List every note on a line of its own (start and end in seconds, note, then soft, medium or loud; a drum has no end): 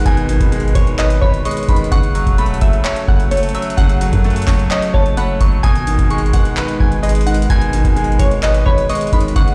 0.00 0.06 B2 loud
0.00 0.29 D#3 medium
0.00 0.52 G#3 medium
0.00 1.88 G#3 medium
0.00 1.88 D#4 medium
0.00 0.29 B4 loud
0.00 1.88 B4 medium
0.00 downlifter medium
0.06 0.39 G#1 loud
0.06 1.22 B2 loud
0.06 0.72 G#5 loud
0.06 kick loud
0.06 closed hi-hat medium
0.17 closed hi-hat medium
0.29 1.45 D#3 medium
0.29 closed hi-hat medium
0.41 0.74 G#1 loud
0.41 kick medium
0.41 closed hi-hat medium
0.52 1.44 G#3 medium
0.52 closed hi-hat medium
0.60 closed hi-hat medium
0.68 closed hi-hat soft
0.75 1.20 G#1 loud
0.75 0.94 C#5 medium
0.75 kick medium
0.75 closed hi-hat medium
0.87 closed hi-hat medium
0.99 1.92 B4 loud
0.99 1.17 D#5 medium
0.99 clap loud
0.99 closed hi-hat medium
1.10 closed hi-hat medium
1.21 1.44 G#1 loud
1.21 1.40 C#5 medium
1.21 1.44 B5 medium
1.21 kick loud
1.34 closed hi-hat medium
1.45 1.92 G#3 medium
1.45 1.89 D#5 medium
1.45 1.67 C#6 medium
1.45 closed hi-hat medium
1.51 closed hi-hat medium
1.57 closed hi-hat medium
1.63 closed hi-hat soft
1.69 1.91 G#1 loud
1.69 1.92 D#3 medium
1.69 1.91 B5 medium
1.69 kick loud
1.69 closed hi-hat medium
1.76 closed hi-hat medium
1.84 closed hi-hat medium
1.92 2.25 F#1 loud
1.92 3.08 C#3 medium
1.92 5.60 F#3 medium
1.92 5.60 C#4 medium
1.92 5.60 A4 medium
1.92 2.57 F#5 loud
1.92 2.36 C#6 loud
1.92 kick loud
1.92 closed hi-hat medium
2.03 closed hi-hat medium
2.15 3.31 F#3 medium
2.15 closed hi-hat medium
2.27 2.60 E1 loud
2.27 kick medium
2.27 closed hi-hat medium
2.38 3.30 A3 medium
2.38 3.27 B5 medium
2.38 closed hi-hat medium
2.46 closed hi-hat medium
2.54 closed hi-hat soft
2.61 2.84 F#1 loud
2.61 3.05 E5 medium
2.61 kick medium
2.61 closed hi-hat medium
2.73 closed hi-hat medium
2.84 4.01 C#5 loud
2.84 clap loud
2.84 closed hi-hat medium
2.96 closed hi-hat medium
3.08 3.53 F#1 loud
3.08 3.27 F#5 medium
3.08 kick loud
3.20 closed hi-hat medium
3.31 4.24 A3 medium
3.31 3.50 C#5 medium
3.31 closed hi-hat medium
3.37 closed hi-hat medium
3.43 closed hi-hat medium
3.49 closed hi-hat soft
3.54 4.00 F#3 medium
3.54 3.73 E5 medium
3.54 closed hi-hat medium
3.62 closed hi-hat medium
3.70 closed hi-hat medium
3.77 4.11 F#1 loud
3.77 4.94 C#3 loud
3.77 4.43 F#5 loud
3.77 kick loud
3.77 closed hi-hat medium
3.89 closed hi-hat medium
4.01 5.17 F#3 medium
4.01 closed hi-hat medium
4.13 4.46 F#2 loud
4.13 kick medium
4.13 closed hi-hat medium
4.24 5.16 A3 loud
4.24 closed hi-hat soft
4.30 closed hi-hat medium
4.36 closed hi-hat medium
4.42 closed hi-hat medium
4.47 4.70 F#1 loud
4.47 4.66 C#5 medium
4.47 kick medium
4.47 clap loud
4.47 open hi-hat medium
4.59 closed hi-hat medium
4.71 5.64 C#5 medium
4.71 4.89 D#5 medium
4.71 clap loud
4.71 closed hi-hat medium
4.82 closed hi-hat medium
4.94 5.39 F#1 loud
4.94 5.12 C#5 medium
4.94 5.16 A5 medium
4.94 kick loud
5.06 closed hi-hat medium
5.17 5.64 A3 medium
5.17 5.36 F#5 medium
5.17 5.40 B5 medium
5.17 closed hi-hat medium
5.41 5.63 F#1 loud
5.41 5.64 F#3 medium
5.41 5.63 C#6 medium
5.41 kick loud
5.41 closed hi-hat medium
5.63 5.97 G#1 loud
5.63 6.80 B2 loud
5.63 9.32 G#3 medium
5.63 9.32 D#4 medium
5.63 9.32 B4 medium
5.63 6.29 G#5 loud
5.63 6.08 D#6 loud
5.63 kick loud
5.63 closed hi-hat medium
5.76 closed hi-hat medium
5.87 7.03 D#3 medium
5.87 closed hi-hat medium
5.99 6.32 G#1 loud
5.99 kick loud
5.99 closed hi-hat medium
6.10 7.01 G#3 medium
6.10 6.99 C#6 medium
6.10 closed hi-hat medium
6.18 closed hi-hat medium
6.26 closed hi-hat soft
6.33 6.56 G#1 loud
6.33 6.77 F#5 medium
6.33 kick medium
6.33 closed hi-hat medium
6.45 closed hi-hat medium
6.57 7.73 B4 loud
6.57 clap loud
6.57 closed hi-hat medium
6.68 closed hi-hat medium
6.80 7.47 G#1 loud
6.80 6.99 G#5 medium
6.80 kick loud
6.92 closed hi-hat medium
7.03 7.95 G#3 medium
7.03 7.21 D#5 medium
7.03 closed hi-hat medium
7.09 closed hi-hat medium
7.15 closed hi-hat medium
7.21 closed hi-hat soft
7.26 7.72 D#3 medium
7.26 7.45 F#5 medium
7.26 closed hi-hat medium
7.34 closed hi-hat medium
7.42 closed hi-hat medium
7.50 7.83 G#1 loud
7.50 8.66 B2 medium
7.50 8.16 G#5 loud
7.50 kick loud
7.50 closed hi-hat medium
7.62 closed hi-hat medium
7.73 8.90 D#3 medium
7.73 closed hi-hat medium
7.85 8.18 G#1 loud
7.85 kick medium
7.85 closed hi-hat medium
7.96 8.88 G#3 medium
7.96 closed hi-hat medium
8.04 closed hi-hat medium
8.12 closed hi-hat soft
8.19 8.64 G#1 loud
8.19 8.38 C#5 medium
8.19 kick medium
8.19 closed hi-hat medium
8.31 closed hi-hat medium
8.43 9.36 B4 loud
8.43 8.61 D#5 medium
8.43 clap loud
8.43 closed hi-hat medium
8.54 closed hi-hat medium
8.66 8.89 G#1 loud
8.66 8.84 C#5 medium
8.66 8.88 B5 medium
8.66 kick loud
8.78 closed hi-hat medium
8.89 9.36 G#3 medium
8.89 9.33 D#5 medium
8.89 9.12 C#6 medium
8.89 closed hi-hat medium
8.95 closed hi-hat medium
9.01 closed hi-hat medium
9.07 closed hi-hat soft
9.13 9.35 G#1 loud
9.13 9.36 D#3 medium
9.13 9.35 B5 medium
9.13 kick loud
9.13 closed hi-hat medium
9.20 closed hi-hat medium
9.28 closed hi-hat medium
9.36 9.55 F#1 loud
9.36 9.55 C#3 medium
9.36 9.55 F#3 medium
9.36 9.55 C#4 medium
9.36 9.55 A4 medium
9.36 9.55 F#5 loud
9.36 9.55 C#6 loud
9.36 kick loud
9.36 closed hi-hat medium
9.48 closed hi-hat medium